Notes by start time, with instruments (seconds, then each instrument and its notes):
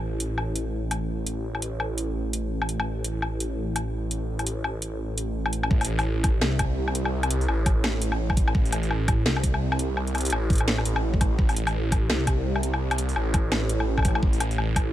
0.02 detuned saw bass A1
0.20 closed hi-hat
0.38 low woodblock
0.56 closed hi-hat
0.91 closed hi-hat, low woodblock
1.27 closed hi-hat
1.55 low woodblock
1.62 closed hi-hat
1.80 low woodblock
1.98 closed hi-hat
2.33 closed hi-hat
2.62 low woodblock
2.69 closed hi-hat
2.80 low woodblock
3.04 closed hi-hat
3.22 low woodblock
3.40 closed hi-hat
3.76 closed hi-hat, low woodblock
4.11 closed hi-hat
4.39 closed hi-hat, low woodblock
4.47 closed hi-hat
4.64 low woodblock
4.82 closed hi-hat
5.18 closed hi-hat
5.46 low woodblock
5.53 closed hi-hat
5.63 low woodblock
5.71 detuned saw bass A1, kick
5.81 closed hi-hat, open hi-hat, low woodblock
5.99 open hi-hat, low woodblock
6.24 kick, closed hi-hat, low woodblock
6.41 detuned saw bass C2, snare, low woodblock
6.59 kick, closed hi-hat, low woodblock
6.88 low woodblock
6.95 closed hi-hat
7.05 low woodblock
7.23 closed hi-hat, low woodblock
7.31 closed hi-hat
7.41 open hi-hat
7.48 detuned saw bass A1, low woodblock
7.66 kick, closed hi-hat, low woodblock
7.84 snare, low woodblock
8.02 closed hi-hat
8.12 low woodblock
8.30 kick, low woodblock
8.37 kick, closed hi-hat
8.48 low woodblock
8.55 detuned saw bass A1, kick
8.65 open hi-hat
8.72 closed hi-hat, low woodblock
8.83 open hi-hat
8.91 low woodblock
9.08 kick, closed hi-hat, low woodblock
9.26 detuned saw bass C2, snare
9.36 low woodblock
9.43 kick, closed hi-hat
9.54 low woodblock
9.72 low woodblock
9.79 closed hi-hat
9.97 low woodblock
10.07 closed hi-hat
10.15 closed hi-hat, low woodblock
10.18 closed hi-hat
10.21 closed hi-hat
10.25 closed hi-hat, open hi-hat
10.30 detuned saw bass A1, closed hi-hat, low woodblock
10.50 kick, closed hi-hat
10.53 closed hi-hat
10.55 closed hi-hat
10.58 closed hi-hat, low woodblock
10.68 snare
10.78 low woodblock
10.85 detuned saw bass A1, closed hi-hat
10.96 low woodblock
11.14 kick
11.21 kick, closed hi-hat, low woodblock
11.39 detuned saw bass A1, kick
11.49 open hi-hat, low woodblock
11.57 closed hi-hat
11.67 open hi-hat, low woodblock
11.92 kick, closed hi-hat, low woodblock
12.10 detuned saw bass C2, snare, low woodblock
12.27 kick, closed hi-hat, low woodblock
12.56 low woodblock
12.63 closed hi-hat
12.74 low woodblock
12.91 closed hi-hat, low woodblock
12.98 closed hi-hat
13.09 open hi-hat
13.16 detuned saw bass A1, low woodblock
13.34 kick, closed hi-hat, low woodblock
13.52 snare, low woodblock
13.69 closed hi-hat
13.80 low woodblock
13.98 kick, low woodblock
13.99 low woodblock
14.03 closed hi-hat, low woodblock
14.05 kick, low woodblock
14.08 low woodblock
14.11 low woodblock
14.15 low woodblock
14.22 detuned saw bass A1, kick
14.33 open hi-hat
14.40 closed hi-hat, low woodblock
14.51 open hi-hat
14.58 low woodblock
14.76 kick, closed hi-hat, low woodblock